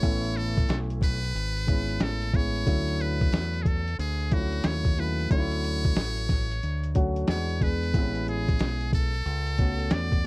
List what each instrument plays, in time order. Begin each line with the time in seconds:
Already playing: muted trumpet C#5
0.02 fingered electric bass A1, grand piano A3 B3 C#4 E4, kick, closed hi-hat
0.24 closed hi-hat
0.37 muted trumpet A4, closed hi-hat
0.57 kick, closed hi-hat
0.69 fingered electric bass B1, snare, closed hi-hat
0.90 closed hi-hat
1.02 muted trumpet B4, kick, closed hi-hat
1.24 closed hi-hat
1.35 fingered electric bass G#1, closed hi-hat
1.57 closed hi-hat
1.67 grand piano G#3 B3 C#4 E4, kick, closed hi-hat
1.89 closed hi-hat
2.00 fingered electric bass A1, muted trumpet A4, snare, closed hi-hat
2.22 closed hi-hat
2.33 grand piano G#3 B3 C#4 E4, muted trumpet C#5, kick, closed hi-hat
2.56 closed hi-hat
2.66 fingered electric bass D2, grand piano F#3 A3 C#4 E4, kick, closed hi-hat
2.88 closed hi-hat
3.01 muted trumpet B4, closed hi-hat
3.21 kick, closed hi-hat
3.32 fingered electric bass E2, snare, closed hi-hat
3.53 closed hi-hat
3.62 muted trumpet G#4, kick, closed hi-hat
3.67 muted trumpet A4
3.88 closed hi-hat
3.99 fingered electric bass D2, muted trumpet G#4, closed hi-hat
4.20 closed hi-hat
4.31 grand piano F3 A3 C#4 E4, muted trumpet F#4, kick, closed hi-hat
4.38 grand piano F#3
4.52 closed hi-hat
4.64 fingered electric bass D#2, muted trumpet C#5, snare, closed hi-hat
4.85 kick, closed hi-hat
4.97 grand piano F#3 A3 C#4 E4, muted trumpet B4, closed hi-hat
5.20 closed hi-hat
5.30 fingered electric bass D2, grand piano F#3 A3 C#4 D#4, muted trumpet C#5, kick, closed hi-hat
5.38 grand piano E4
5.51 closed hi-hat
5.64 closed hi-hat
5.84 kick, closed hi-hat
5.95 fingered electric bass A1, snare, closed hi-hat
6.17 closed hi-hat
6.29 kick, snare, closed hi-hat
6.51 closed hi-hat
6.63 fingered electric bass D2, closed hi-hat
6.83 closed hi-hat
6.95 grand piano F#3 A3 C#4 F#4, kick, closed hi-hat
7.16 closed hi-hat
7.27 fingered electric bass E2, grand piano G#3 B3 D4 F#4, muted trumpet C#5, snare, closed hi-hat
7.49 closed hi-hat
7.61 grand piano G#3 B3 D4 G#4, muted trumpet B4, kick, closed hi-hat
7.83 closed hi-hat
7.94 fingered electric bass A1, grand piano G#3 B3 C4 E4, kick, closed hi-hat
8.01 grand piano C#4
8.15 closed hi-hat
8.28 muted trumpet G#4, closed hi-hat
8.48 kick, closed hi-hat
8.59 fingered electric bass B1, snare, closed hi-hat
8.81 closed hi-hat
8.93 muted trumpet A4, kick, closed hi-hat
9.14 closed hi-hat
9.26 fingered electric bass C#2, closed hi-hat
9.47 closed hi-hat
9.58 grand piano A3 B3 C#4 F#4, kick, closed hi-hat
9.79 closed hi-hat
9.91 fingered electric bass E2, muted trumpet D5, snare, closed hi-hat
10.12 kick, closed hi-hat